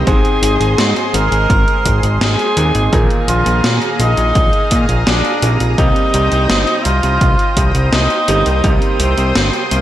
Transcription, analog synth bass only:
0, 0, Header, 1, 2, 480
1, 0, Start_track
1, 0, Key_signature, -3, "minor"
1, 0, Tempo, 714286
1, 46, Time_signature, 4, 2, 24, 8
1, 6594, End_track
2, 0, Start_track
2, 0, Title_t, "Analog synth bass"
2, 0, Program_c, 0, 38
2, 47, Note_on_c, 0, 32, 105
2, 150, Note_off_c, 0, 32, 0
2, 284, Note_on_c, 0, 32, 91
2, 389, Note_off_c, 0, 32, 0
2, 405, Note_on_c, 0, 32, 85
2, 509, Note_off_c, 0, 32, 0
2, 526, Note_on_c, 0, 44, 103
2, 630, Note_off_c, 0, 44, 0
2, 765, Note_on_c, 0, 32, 97
2, 870, Note_off_c, 0, 32, 0
2, 884, Note_on_c, 0, 32, 81
2, 989, Note_off_c, 0, 32, 0
2, 1007, Note_on_c, 0, 32, 100
2, 1110, Note_off_c, 0, 32, 0
2, 1246, Note_on_c, 0, 32, 95
2, 1350, Note_off_c, 0, 32, 0
2, 1368, Note_on_c, 0, 32, 87
2, 1471, Note_off_c, 0, 32, 0
2, 1485, Note_on_c, 0, 32, 102
2, 1590, Note_off_c, 0, 32, 0
2, 1726, Note_on_c, 0, 39, 98
2, 1830, Note_off_c, 0, 39, 0
2, 1846, Note_on_c, 0, 32, 79
2, 1950, Note_off_c, 0, 32, 0
2, 1966, Note_on_c, 0, 34, 102
2, 2070, Note_off_c, 0, 34, 0
2, 2204, Note_on_c, 0, 34, 92
2, 2309, Note_off_c, 0, 34, 0
2, 2324, Note_on_c, 0, 34, 87
2, 2429, Note_off_c, 0, 34, 0
2, 2445, Note_on_c, 0, 46, 104
2, 2549, Note_off_c, 0, 46, 0
2, 2684, Note_on_c, 0, 34, 96
2, 2789, Note_off_c, 0, 34, 0
2, 2804, Note_on_c, 0, 34, 84
2, 2909, Note_off_c, 0, 34, 0
2, 2926, Note_on_c, 0, 34, 96
2, 3030, Note_off_c, 0, 34, 0
2, 3166, Note_on_c, 0, 46, 95
2, 3270, Note_off_c, 0, 46, 0
2, 3285, Note_on_c, 0, 34, 82
2, 3389, Note_off_c, 0, 34, 0
2, 3406, Note_on_c, 0, 34, 103
2, 3510, Note_off_c, 0, 34, 0
2, 3645, Note_on_c, 0, 34, 98
2, 3750, Note_off_c, 0, 34, 0
2, 3766, Note_on_c, 0, 34, 78
2, 3870, Note_off_c, 0, 34, 0
2, 3885, Note_on_c, 0, 36, 106
2, 3989, Note_off_c, 0, 36, 0
2, 4127, Note_on_c, 0, 36, 94
2, 4231, Note_off_c, 0, 36, 0
2, 4247, Note_on_c, 0, 36, 82
2, 4351, Note_off_c, 0, 36, 0
2, 4366, Note_on_c, 0, 31, 101
2, 4470, Note_off_c, 0, 31, 0
2, 4606, Note_on_c, 0, 36, 93
2, 4710, Note_off_c, 0, 36, 0
2, 4727, Note_on_c, 0, 36, 83
2, 4831, Note_off_c, 0, 36, 0
2, 4845, Note_on_c, 0, 36, 103
2, 4950, Note_off_c, 0, 36, 0
2, 5085, Note_on_c, 0, 36, 96
2, 5190, Note_off_c, 0, 36, 0
2, 5206, Note_on_c, 0, 36, 86
2, 5310, Note_off_c, 0, 36, 0
2, 5326, Note_on_c, 0, 36, 102
2, 5430, Note_off_c, 0, 36, 0
2, 5567, Note_on_c, 0, 31, 95
2, 5670, Note_off_c, 0, 31, 0
2, 5687, Note_on_c, 0, 36, 82
2, 5791, Note_off_c, 0, 36, 0
2, 5805, Note_on_c, 0, 36, 103
2, 5910, Note_off_c, 0, 36, 0
2, 6046, Note_on_c, 0, 36, 94
2, 6150, Note_off_c, 0, 36, 0
2, 6167, Note_on_c, 0, 36, 85
2, 6270, Note_off_c, 0, 36, 0
2, 6286, Note_on_c, 0, 31, 99
2, 6390, Note_off_c, 0, 31, 0
2, 6528, Note_on_c, 0, 36, 96
2, 6594, Note_off_c, 0, 36, 0
2, 6594, End_track
0, 0, End_of_file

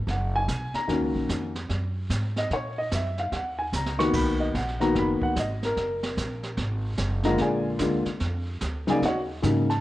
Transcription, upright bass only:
0, 0, Header, 1, 3, 480
1, 0, Start_track
1, 0, Key_signature, -6, "minor"
1, 0, Tempo, 407056
1, 1039, Time_signature, 4, 2, 24, 8
1, 11563, End_track
2, 0, Start_track
2, 0, Title_t, "Upright bass"
2, 0, Program_c, 0, 32
2, 81, Note_on_c, 0, 30, 86
2, 545, Note_off_c, 0, 30, 0
2, 563, Note_on_c, 0, 35, 82
2, 848, Note_off_c, 0, 35, 0
2, 1041, Note_on_c, 0, 39, 67
2, 1187, Note_off_c, 0, 39, 0
2, 1187, Note_on_c, 0, 37, 56
2, 1344, Note_off_c, 0, 37, 0
2, 1351, Note_on_c, 0, 34, 65
2, 1504, Note_off_c, 0, 34, 0
2, 1520, Note_on_c, 0, 41, 87
2, 1986, Note_off_c, 0, 41, 0
2, 2000, Note_on_c, 0, 42, 81
2, 2466, Note_off_c, 0, 42, 0
2, 2474, Note_on_c, 0, 44, 86
2, 2943, Note_off_c, 0, 44, 0
2, 2953, Note_on_c, 0, 46, 64
2, 3423, Note_off_c, 0, 46, 0
2, 3441, Note_on_c, 0, 42, 80
2, 3907, Note_off_c, 0, 42, 0
2, 3916, Note_on_c, 0, 39, 78
2, 4384, Note_off_c, 0, 39, 0
2, 4395, Note_on_c, 0, 37, 78
2, 4864, Note_off_c, 0, 37, 0
2, 4881, Note_on_c, 0, 35, 70
2, 5347, Note_off_c, 0, 35, 0
2, 5361, Note_on_c, 0, 34, 86
2, 5827, Note_off_c, 0, 34, 0
2, 5841, Note_on_c, 0, 30, 84
2, 6129, Note_off_c, 0, 30, 0
2, 6317, Note_on_c, 0, 32, 77
2, 6785, Note_off_c, 0, 32, 0
2, 6799, Note_on_c, 0, 30, 67
2, 7266, Note_off_c, 0, 30, 0
2, 7277, Note_on_c, 0, 34, 81
2, 7741, Note_off_c, 0, 34, 0
2, 7748, Note_on_c, 0, 32, 94
2, 8220, Note_off_c, 0, 32, 0
2, 8232, Note_on_c, 0, 30, 88
2, 8702, Note_off_c, 0, 30, 0
2, 8708, Note_on_c, 0, 34, 75
2, 9179, Note_off_c, 0, 34, 0
2, 9190, Note_on_c, 0, 38, 93
2, 9482, Note_off_c, 0, 38, 0
2, 9675, Note_on_c, 0, 41, 87
2, 10142, Note_off_c, 0, 41, 0
2, 10157, Note_on_c, 0, 38, 79
2, 10623, Note_off_c, 0, 38, 0
2, 10637, Note_on_c, 0, 39, 66
2, 11103, Note_off_c, 0, 39, 0
2, 11125, Note_on_c, 0, 44, 91
2, 11563, Note_off_c, 0, 44, 0
2, 11563, End_track
3, 0, Start_track
3, 0, Title_t, "Muted upright bass strokes"
3, 871, Note_on_c, 9, 29, 39
3, 989, Note_off_c, 9, 29, 0
3, 6149, Note_on_c, 9, 29, 36
3, 6266, Note_off_c, 9, 29, 0
3, 9503, Note_on_c, 9, 29, 41
3, 9621, Note_off_c, 9, 29, 0
3, 11563, End_track
0, 0, End_of_file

